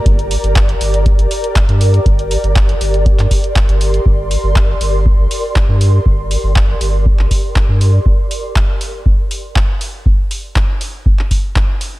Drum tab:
HH |xxoxxxoxxxoxxxox|xxoxxxoxxxoxxxox|--o---o---o---o-|--o---o---o---o-|
CP |----x-------x---|----x----x--x---|----x-------x---|----x----x--x---|
BD |o---o---o---o---|o---o---o-o-o---|o---o---o---o---|o---o---o-o-o---|

HH |--o---o---o---o-|--o---o---o---o-|
CP |----x-------x---|----x----x--x---|
BD |o---o---o---o---|o---o---o-o-o---|